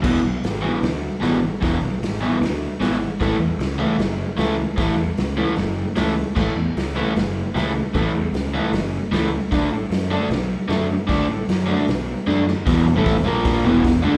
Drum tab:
CC |x-------|--------|--------|--------|
HH |--o-o-o-|o-o-o-o-|o-o-o-o-|o-o-o-o-|
SD |o-o-o-o-|o-o-o-o-|o-o-o-o-|o-o-o-o-|
BD |o-------|o-------|o-------|o-------|

CC |x-------|--------|--------|--------|
HH |--o-o-o-|o-o-o-o-|o-o-o-o-|o-o-o---|
SD |o-o-o-o-|o-o-o-o-|o-o-o-o-|o-o-o-oo|
BD |o-------|o-------|o-------|o-------|

CC |--------|
HH |o-o-o-o-|
SD |o-o-o-o-|
BD |o-o-o-o-|